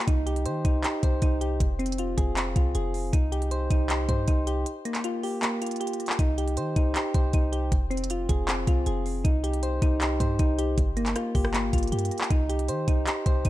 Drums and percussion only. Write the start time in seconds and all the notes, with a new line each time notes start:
0.01 closed hi-hat
0.08 kick, closed hi-hat
0.27 closed hi-hat
0.36 closed hi-hat
0.46 closed hi-hat
0.65 kick, closed hi-hat
0.84 clap, closed hi-hat
1.03 kick, closed hi-hat
1.22 kick, closed hi-hat
1.41 closed hi-hat
1.60 kick, closed hi-hat
1.80 closed hi-hat
1.86 closed hi-hat
1.92 closed hi-hat
1.98 closed hi-hat
2.18 kick, closed hi-hat
2.37 clap, closed hi-hat
2.56 kick, closed hi-hat
2.75 closed hi-hat
2.94 open hi-hat
3.13 kick, closed hi-hat
3.32 closed hi-hat
3.42 closed hi-hat
3.51 closed hi-hat
3.71 kick, closed hi-hat
3.90 clap, closed hi-hat
4.09 kick, closed hi-hat
4.28 kick, closed hi-hat
4.47 closed hi-hat
4.66 closed hi-hat
4.85 closed hi-hat
4.95 clap, closed hi-hat
5.04 closed hi-hat
5.23 open hi-hat
5.43 clap, closed hi-hat
5.62 closed hi-hat
5.66 closed hi-hat
5.71 closed hi-hat
5.76 closed hi-hat
5.81 closed hi-hat
5.87 closed hi-hat
5.93 closed hi-hat
6.00 closed hi-hat
6.06 clap, closed hi-hat
6.13 closed hi-hat
6.19 kick, closed hi-hat
6.38 closed hi-hat
6.48 closed hi-hat
6.57 closed hi-hat
6.76 kick, closed hi-hat
6.95 clap, closed hi-hat
7.14 kick, closed hi-hat
7.33 kick, closed hi-hat
7.53 closed hi-hat
7.72 kick, closed hi-hat
7.91 closed hi-hat
7.97 closed hi-hat
8.04 closed hi-hat
8.10 closed hi-hat
8.29 kick, closed hi-hat
8.48 clap, closed hi-hat
8.67 kick, closed hi-hat
8.86 closed hi-hat
9.06 open hi-hat
9.25 kick, closed hi-hat
9.44 closed hi-hat
9.53 closed hi-hat
9.63 closed hi-hat
9.82 kick, closed hi-hat
10.01 clap, closed hi-hat
10.20 kick, closed hi-hat
10.39 kick, closed hi-hat
10.59 closed hi-hat
10.78 kick, closed hi-hat
10.97 closed hi-hat
11.06 clap, closed hi-hat
11.16 cross-stick, closed hi-hat
11.35 kick, open hi-hat
11.45 cross-stick
11.54 clap, closed hi-hat
11.73 kick, closed hi-hat
11.78 closed hi-hat
11.83 closed hi-hat
11.87 closed hi-hat
11.92 closed hi-hat
11.99 closed hi-hat
12.05 closed hi-hat
12.11 closed hi-hat
12.18 clap, closed hi-hat
12.24 closed hi-hat
12.30 kick, closed hi-hat
12.50 closed hi-hat
12.59 closed hi-hat
12.68 closed hi-hat
12.88 kick, closed hi-hat
13.07 clap, closed hi-hat
13.26 kick, closed hi-hat
13.45 kick, closed hi-hat